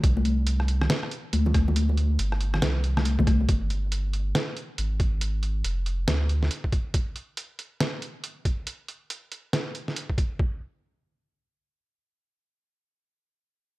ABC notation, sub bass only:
X:1
M:4/4
L:1/8
Q:"Swing 16ths" 1/4=139
K:Gphr
V:1 name="Sub bass" clef=bass
C,,4 z2 D,,2- | D,,2 G,,,2 C,,3 C,, | G,,,4 z2 A,,,2- | A,,,2 F,,,2 D,,2 z2 |
z8 | z8 | z8 | z8 |]